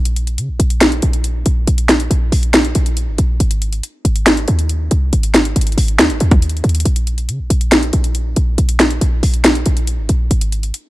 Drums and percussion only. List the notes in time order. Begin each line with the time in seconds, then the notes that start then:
0.05 closed hi-hat
0.16 closed hi-hat
0.27 closed hi-hat
0.38 closed hi-hat
0.60 closed hi-hat
0.70 closed hi-hat
0.81 snare, closed hi-hat
0.92 closed hi-hat
1.02 closed hi-hat
1.13 closed hi-hat
1.24 closed hi-hat
1.46 closed hi-hat
1.67 closed hi-hat
1.78 closed hi-hat
1.89 snare, closed hi-hat
2.00 closed hi-hat
2.11 closed hi-hat
2.32 open hi-hat
2.43 closed hi-hat
2.54 snare, closed hi-hat
2.65 closed hi-hat
2.75 closed hi-hat
2.86 closed hi-hat
2.97 closed hi-hat
3.18 closed hi-hat
3.40 closed hi-hat
3.51 closed hi-hat
3.62 closed hi-hat
3.73 closed hi-hat
3.83 closed hi-hat
4.05 closed hi-hat
4.16 closed hi-hat
4.26 snare, closed hi-hat
4.37 closed hi-hat
4.48 closed hi-hat
4.59 closed hi-hat
4.69 closed hi-hat
4.91 closed hi-hat
5.13 closed hi-hat
5.23 closed hi-hat
5.34 snare, closed hi-hat
5.45 closed hi-hat
5.56 closed hi-hat
5.61 closed hi-hat
5.67 closed hi-hat
5.72 closed hi-hat
5.78 open hi-hat
5.88 closed hi-hat
5.99 snare, closed hi-hat
6.10 closed hi-hat
6.20 closed hi-hat
6.31 kick, closed hi-hat
6.42 closed hi-hat
6.49 closed hi-hat
6.57 closed hi-hat
6.64 closed hi-hat
6.69 closed hi-hat
6.75 closed hi-hat
6.80 closed hi-hat
6.85 closed hi-hat
6.96 closed hi-hat
7.07 closed hi-hat
7.18 closed hi-hat
7.29 closed hi-hat
7.50 closed hi-hat
7.61 closed hi-hat
7.72 snare, closed hi-hat
7.83 closed hi-hat
7.93 closed hi-hat
8.04 closed hi-hat
8.15 closed hi-hat
8.36 closed hi-hat
8.58 closed hi-hat
8.69 closed hi-hat
8.80 snare, closed hi-hat
8.91 closed hi-hat
9.01 closed hi-hat
9.23 open hi-hat
9.34 closed hi-hat
9.44 snare, closed hi-hat
9.55 closed hi-hat
9.66 closed hi-hat
9.77 closed hi-hat
9.87 closed hi-hat
10.09 closed hi-hat
10.31 closed hi-hat
10.41 closed hi-hat
10.52 closed hi-hat
10.63 closed hi-hat
10.74 closed hi-hat